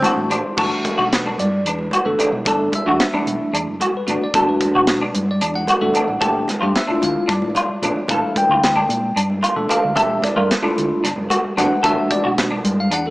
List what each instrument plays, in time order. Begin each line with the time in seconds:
Already playing: tenor saxophone C4
0.02 tine electric piano E3 A3 D4 F#4 A5, clean electric guitar F#4, muted fingered electric bass stroke, closed hi-hat, muted conga, high conga, low conga
0.16 fingered electric bass A1
0.30 clean electric guitar D4, tine electric piano C5, closed hi-hat, low conga
0.43 high conga
0.57 fingered electric bass G1, tine electric piano E3 A3 D4 F#4, clean electric guitar A4, kick, crash, muted conga
0.85 muted fingered electric bass stroke, kick, closed hi-hat, high conga, low conga
0.98 fingered electric bass B1, clean electric guitar F#4
1.12 tine electric piano B4, snare, closed hi-hat
1.26 clean electric guitar D4, muted conga, low conga
1.38 fingered electric bass G2, tine electric piano D5, closed hi-hat, high conga
1.65 fingered electric bass E2, clean electric guitar D4, closed hi-hat
1.69 tine electric piano B4
1.79 high conga, low conga
1.91 clean electric guitar F#4, muted fingered electric bass stroke, closed hi-hat, muted conga
2.05 fingered electric bass G1, tine electric piano E3 A3 D4 A4
2.19 clean electric guitar D4, muted fingered electric bass stroke, closed hi-hat, low conga
2.32 fingered electric bass B1, high conga
2.45 fingered electric bass G1, tine electric piano E3 A3 D4 A4 D5, clean electric guitar A4, kick, closed hi-hat, muted conga
2.72 tine electric piano E5, kick, closed hi-hat, high conga, low conga
2.86 fingered electric bass E2, tine electric piano E3 A3 D4 F#4, clean electric guitar F#4
3.00 snare, closed hi-hat
3.13 tine electric piano E3 A3 D4 E4, clean electric guitar D4, muted fingered electric bass stroke, muted conga, low conga
3.26 fingered electric bass B1, closed hi-hat, high conga
3.40 muted fingered electric bass stroke
3.53 fingered electric bass E2, clean electric guitar D4, closed hi-hat
3.67 fingered electric bass F#1, high conga
3.80 clean electric guitar F#4, closed hi-hat, muted conga
3.95 tine electric piano B4, muted fingered electric bass stroke
4.07 fingered electric bass G1, tine electric piano E3 A3 D4 F#4, clean electric guitar D4, closed hi-hat, low conga
4.21 tine electric piano D5, high conga
4.34 fingered electric bass G1, tine electric piano E3 A3 D4 F#4, clean electric guitar A4, kick, closed hi-hat, muted conga
4.49 tine electric piano B4
4.61 muted fingered electric bass stroke, kick, closed hi-hat, high conga, low conga
4.75 fingered electric bass B1, clean electric guitar F#4
4.87 snare, closed hi-hat
5.00 clean electric guitar D4, muted conga, low conga
5.14 fingered electric bass G2, closed hi-hat, high conga
5.31 tine electric piano D5
5.41 fingered electric bass E2, clean electric guitar D4, closed hi-hat
5.54 tine electric piano F#5, high conga, low conga
5.67 clean electric guitar F#4, muted fingered electric bass stroke, closed hi-hat, muted conga
5.81 fingered electric bass G1, tine electric piano E3 A3 D4 A4
5.94 clean electric guitar D4, closed hi-hat, low conga
6.07 fingered electric bass A1, high conga
6.21 fingered electric bass A#1, tine electric piano E3 A3 D4 G4, clean electric guitar A4, kick, closed hi-hat, muted conga
6.48 snare, closed hi-hat, high conga, low conga
6.61 fingered electric bass G2, tine electric piano E3 A3 D4 G4, clean electric guitar F4, low conga
6.75 tine electric piano E5, snare, closed hi-hat
6.87 tine electric piano A3 D4 E4 F4, clean electric guitar D4, muted fingered electric bass stroke, muted conga, low conga
7.02 fingered electric bass D2, tine electric piano F5, closed hi-hat, high conga, low conga
7.15 muted fingered electric bass stroke, low conga
7.28 fingered electric bass G2, clean electric guitar D4, tine electric piano D5, kick, snare, closed hi-hat
7.42 fingered electric bass A1, high conga, low conga
7.55 clean electric guitar F4, closed hi-hat, muted conga
7.69 muted fingered electric bass stroke, low conga
7.82 fingered electric bass A#1, tine electric piano E3 A3 D4 F4, clean electric guitar D4, closed hi-hat, low conga
7.95 muted fingered electric bass stroke, high conga
8.08 fingered electric bass A#1, tine electric piano E3 A3 D4 E4 F5, clean electric guitar A4, kick, closed hi-hat, muted conga
8.36 tine electric piano G5, muted fingered electric bass stroke, kick, closed hi-hat, high conga, low conga
8.49 fingered electric bass D2, clean electric guitar F4
8.63 snare, closed hi-hat
8.76 clean electric guitar D4, muted conga, low conga
8.89 fingered electric bass A#2, closed hi-hat, high conga
9.16 fingered electric bass G2, clean electric guitar D4, closed hi-hat
9.30 high conga, low conga
9.43 clean electric guitar F4, muted fingered electric bass stroke, closed hi-hat, muted conga
9.56 fingered electric bass A#1, tine electric piano E3 A3 D4 A4
9.69 clean electric guitar D4, tine electric piano F5, muted fingered electric bass stroke, closed hi-hat, low conga
9.83 fingered electric bass D2, high conga
9.96 fingered electric bass A#1, tine electric piano E3 A3 D4 G4 E5, clean electric guitar A4, kick, closed hi-hat, muted conga
10.22 tine electric piano D5, kick, snare, closed hi-hat, high conga, low conga
10.35 fingered electric bass G2, tine electric piano E3 A3 D4 A#4, clean electric guitar F4
10.51 snare, closed hi-hat
10.62 tine electric piano A3 D4 E4 F4, clean electric guitar D4, muted fingered electric bass stroke, muted conga, low conga
10.76 fingered electric bass D2, closed hi-hat, high conga
10.92 muted fingered electric bass stroke
11.04 fingered electric bass G1, clean electric guitar D4, snare, closed hi-hat
11.16 fingered electric bass F#1, high conga, low conga
11.30 clean electric guitar F#4, closed hi-hat, muted conga
11.45 muted fingered electric bass stroke
11.57 fingered electric bass G1, tine electric piano E3 A3 D4 F#4 F#5, clean electric guitar D4, snare, closed hi-hat, low conga
11.71 muted fingered electric bass stroke, high conga
11.83 fingered electric bass G1, tine electric piano E3 A3 D4 F#4 E5, clean electric guitar A4, kick, closed hi-hat, muted conga
12.10 tine electric piano D5, muted fingered electric bass stroke, kick, closed hi-hat, high conga, low conga
12.24 fingered electric bass B1, clean electric guitar F#4
12.38 snare, closed hi-hat
12.51 clean electric guitar D4, muted conga, low conga
12.64 fingered electric bass G2, closed hi-hat, high conga
12.80 tine electric piano F5
12.90 fingered electric bass E2, clean electric guitar D4, tine electric piano F#5, closed hi-hat
13.06 tine electric piano A4, high conga, low conga